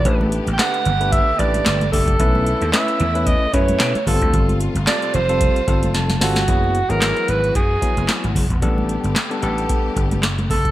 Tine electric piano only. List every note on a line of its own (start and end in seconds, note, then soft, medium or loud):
0.05 0.47 A3 medium
0.05 0.48 D4 medium
0.05 0.48 G4 medium
0.05 0.48 B4 medium
0.59 0.90 A3 medium
0.59 0.90 D4 medium
0.59 0.90 G4 medium
0.59 0.90 B4 medium
1.00 1.31 A3 medium
1.00 1.31 D4 medium
1.00 1.31 G4 medium
1.00 1.31 B4 medium
1.39 1.81 A3 medium
1.39 1.82 D4 medium
1.39 1.82 G4 medium
1.39 1.82 B4 medium
1.93 2.14 A3 medium
1.93 2.14 D4 medium
1.93 2.14 G4 medium
1.93 2.14 D5 medium
2.19 2.62 A3 medium
2.19 2.62 C#4 medium
2.19 2.62 E4 medium
2.19 2.62 B4 medium
2.73 3.04 A3 medium
2.73 3.04 C#4 medium
2.73 3.04 E4 medium
2.73 3.04 B4 medium
3.15 3.45 A3 medium
3.15 3.45 C#4 medium
3.15 3.45 E4 medium
3.15 3.45 B4 medium
3.53 3.96 A3 medium
3.53 3.96 C#4 medium
3.53 3.96 E4 medium
3.53 3.96 B4 medium
4.07 4.72 G3 medium
4.07 4.14 B3 medium
4.07 4.73 F4 medium
4.07 4.73 A4 medium
4.13 4.76 C4 medium
4.87 5.18 G3 medium
4.87 5.18 C4 medium
4.87 5.19 F4 medium
4.87 5.19 A4 medium
5.29 5.59 G3 medium
5.29 5.59 C4 medium
5.29 5.59 F4 medium
5.29 5.59 A4 medium
5.67 6.10 G3 medium
5.67 6.10 C4 medium
5.67 6.10 F4 medium
5.67 6.10 A4 medium
5.94 6.44 A5 medium
6.21 6.42 G3 medium
6.21 6.42 C4 medium
6.21 6.42 F4 medium
6.21 6.43 A4 loud
6.48 6.79 F#3 medium
6.48 6.79 B3 medium
6.48 6.79 E4 medium
6.48 6.79 G#4 medium
6.89 7.60 F#3 medium
6.89 7.60 B3 medium
6.89 7.60 E4 medium
6.89 7.61 G#4 medium
7.82 8.44 F#3 medium
7.82 8.44 B3 medium
7.82 8.44 E4 medium
7.82 8.44 G#4 medium
8.62 9.14 G3 medium
8.62 9.14 B3 medium
8.62 9.14 D4 medium
8.62 9.14 A4 loud
9.30 9.40 G3 medium
9.30 9.40 B3 medium
9.30 9.40 D4 medium
9.30 9.40 A4 medium
9.42 10.24 G3 medium
9.42 10.24 B3 medium
9.42 10.24 D4 medium
9.42 10.25 A4 loud